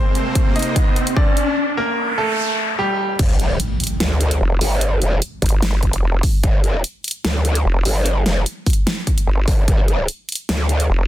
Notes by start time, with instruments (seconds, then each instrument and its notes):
Already playing: supersaw synth C3 A#3 C4 C5, grand piano C4 C5, riser
0.15 closed hi-hat
0.35 kick, closed hi-hat
0.56 grand piano D#4 D#5, closed hi-hat
0.59 closed hi-hat
0.62 closed hi-hat
0.76 kick, closed hi-hat
0.96 closed hi-hat
1.07 closed hi-hat
1.16 grand piano D4 D5, kick
1.37 closed hi-hat
1.57 noise sweep
1.77 grand piano A#3 A#4
2.18 grand piano A3 A4
2.79 grand piano G3 G4
3.19 wobble bass G1, kick, closed hi-hat, crash, impact
3.40 closed hi-hat
3.60 closed hi-hat
3.80 closed hi-hat
3.84 closed hi-hat
3.87 closed hi-hat
4.00 wobble bass D2, snare, closed hi-hat
4.21 closed hi-hat
4.31 closed hi-hat
4.41 wobble bass F1
4.61 wobble bass G1, open hi-hat
4.81 closed hi-hat
5.02 wobble bass F1, closed hi-hat
5.22 closed hi-hat
5.42 wobble bass G1, kick, closed hi-hat
5.46 closed hi-hat
5.49 closed hi-hat
5.62 snare, closed hi-hat
5.83 wobble bass F#1, kick, closed hi-hat
5.93 closed hi-hat
6.03 wobble bass F1
6.23 kick, open hi-hat
6.43 wobble bass G1, kick, closed hi-hat
6.64 closed hi-hat
6.84 closed hi-hat
7.04 closed hi-hat
7.08 closed hi-hat
7.11 closed hi-hat
7.25 wobble bass D2, snare, closed hi-hat
7.45 closed hi-hat
7.55 closed hi-hat
7.65 wobble bass F1
7.85 wobble bass G1, open hi-hat
8.06 closed hi-hat
8.26 wobble bass F1, snare, closed hi-hat
8.46 closed hi-hat
8.66 kick, closed hi-hat, open hi-hat
8.73 closed hi-hat
8.87 snare, closed hi-hat
9.07 kick, closed hi-hat
9.18 closed hi-hat
9.27 wobble bass G1
9.48 wobble bass G1, kick, open hi-hat
9.68 wobble bass G1, kick, closed hi-hat
9.88 closed hi-hat
10.08 closed hi-hat
10.29 closed hi-hat
10.32 closed hi-hat
10.35 closed hi-hat
10.49 wobble bass D2, snare, closed hi-hat
10.69 closed hi-hat
10.80 closed hi-hat
10.90 wobble bass F1